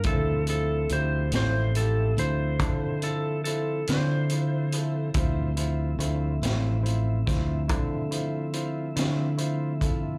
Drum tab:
HH |xxxxxxxxxxxx|xxxxxxxxxxxx|
SD |---o-----o--|---o-o---o--|
BD |o-----o-----|o----oo----o|